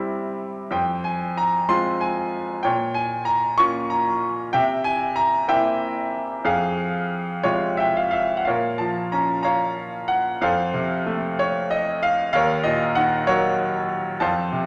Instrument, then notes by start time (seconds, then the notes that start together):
grand piano
Already playing: C3 G3 C4 E4 E5 G5
0.71 F2 C5 G5
1.04 G#5
1.37 A#5
1.69 G#3 C4 F4 C6
2.01 G#5
2.63 A#2 C#5 G5
2.94 G#5
3.25 A#5
3.58 A#3 C#4 F4 C#6
3.90 A#5
4.53 C3 E5 G5
4.84 G#5
5.16 A#5
5.48 A#3 C4 E4 E5 G5
6.44 F2 G#4 F5
7.43 C3 G#3 F4 C#5
7.77 E5 G5
7.97 F5
8.11 E5 F5
8.37 F#5
8.45 A#2 A#4 C#5 F5
8.78 F3 A5
9.12 C#4 A#5
9.43 C#5 F5 A#5
10.08 F#5
10.41 F2 A4 C5 F5
10.74 C3
11.06 A3
11.39 C#5
11.70 D#5
12.03 F5
12.33 D#2 A#4 C#5 F5
12.64 A#2 D#5
12.95 D#3 F#5
13.27 F#3 F#4 A#4 C#5
14.20 F2 C5 F5 A5
14.52 C3